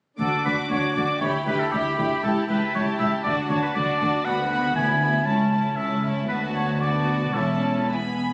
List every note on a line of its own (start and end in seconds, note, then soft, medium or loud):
0.19 0.27 D2 soft
0.19 0.28 D2 soft
0.19 0.44 D4 soft
0.19 0.45 F#4 soft
0.19 0.43 A4 soft
0.19 0.45 D6 soft
0.45 0.53 D2 soft
0.45 0.69 D4 soft
0.45 0.70 F#4 soft
0.45 0.57 B4 soft
0.45 0.70 D6 soft
0.70 0.79 D2 soft
0.70 0.95 D4 soft
0.70 0.95 F#4 soft
0.70 0.95 C#5 soft
0.70 0.95 D6 soft
0.96 1.04 D2 soft
0.96 1.21 D4 soft
0.96 1.21 F#4 soft
0.96 1.21 D5 soft
0.96 1.21 D6 soft
1.21 1.29 D2 soft
1.21 1.30 D2 soft
1.21 1.46 E4 soft
1.21 1.45 G4 soft
1.21 1.33 C#5 soft
1.21 1.46 B5 soft
1.46 1.55 D2 soft
1.46 1.72 E4 soft
1.46 1.71 G4 soft
1.46 1.61 B4 soft
1.46 1.72 B5 soft
1.60 1.73 A4 soft
1.72 1.81 D2 soft
1.72 1.97 E4 soft
1.72 2.23 G4 medium
1.72 1.97 G4 soft
1.72 1.97 B5 soft
1.98 2.06 D2 soft
1.98 2.23 E4 soft
1.98 2.23 G4 soft
1.98 2.23 B5 soft
2.24 2.32 C#2 soft
2.24 2.48 E4 soft
2.24 2.48 G4 soft
2.24 2.35 A4 soft
2.24 2.49 A5 soft
2.49 2.57 C#2 soft
2.49 2.73 E4 soft
2.49 2.74 G4 soft
2.49 2.74 B4 soft
2.49 2.74 A5 soft
2.74 2.83 C#2 soft
2.74 2.99 E4 soft
2.74 2.99 G4 soft
2.74 2.86 C#5 medium
2.74 2.98 A5 soft
2.99 3.08 C#2 soft
2.99 3.25 E4 soft
2.99 3.25 G4 soft
2.99 3.11 E5 medium
2.99 3.23 A5 soft
3.24 3.33 D2 soft
3.24 3.34 D2 soft
3.24 3.50 D4 soft
3.24 3.49 F#4 soft
3.24 3.35 D5 medium
3.24 3.49 A5 soft
3.49 3.58 D2 soft
3.49 3.75 D4 soft
3.49 3.74 F#4 soft
3.49 3.62 C#5 medium
3.49 3.75 A5 soft
3.63 3.74 B4 medium
3.75 3.84 D2 soft
3.75 4.00 D4 soft
3.75 4.00 F#4 soft
3.75 4.26 D5 medium
3.75 3.99 A5 soft
4.01 4.09 D2 soft
4.01 4.26 D4 soft
4.01 4.25 F#4 soft
4.01 4.26 A5 soft
4.25 4.71 D2 soft
4.25 4.51 B3 soft
4.25 4.50 F#4 soft
4.25 4.75 F#5 medium
4.25 4.50 B5 soft
4.51 4.76 B3 soft
4.51 4.76 F#4 soft
4.51 4.75 B5 soft
4.76 5.21 D2 soft
4.76 5.21 D2 medium
4.76 5.01 B3 soft
4.76 5.01 E4 soft
4.76 5.27 G#5 medium
4.76 5.00 B5 soft
5.01 5.27 B3 soft
5.01 5.26 E4 soft
5.01 5.26 B5 soft
5.25 5.72 C#2 soft
5.25 5.52 C#4 soft
5.25 5.52 E4 soft
5.25 5.77 A5 medium
5.25 5.50 A5 soft
5.52 5.77 C#4 soft
5.52 5.77 E4 soft
5.52 5.75 A5 soft
5.76 6.22 C#2 medium
5.76 6.23 C#2 medium
5.76 6.02 C#4 soft
5.76 6.03 E4 soft
5.76 6.02 E5 medium
5.76 6.02 A5 soft
6.03 6.28 C#4 soft
6.03 6.29 E4 soft
6.03 6.28 A5 soft
6.28 7.31 D2 soft
6.28 6.78 B3 soft
6.28 6.78 F#4 soft
6.28 6.40 B4 medium
6.28 6.78 A5 soft
6.55 6.80 C#5 medium
6.81 7.33 B3 soft
6.81 7.34 F#4 soft
6.81 7.35 D5 medium
6.81 7.34 A5 soft
7.34 8.20 E1 soft
7.34 8.21 E2 soft
7.34 7.88 C#4 soft
7.34 7.87 E4 soft
7.34 7.88 A4 soft
7.34 7.87 A5 soft
7.88 8.20 B3 soft
7.88 7.96 E4 soft
7.88 8.21 G#5 soft
7.88 8.33 B5 medium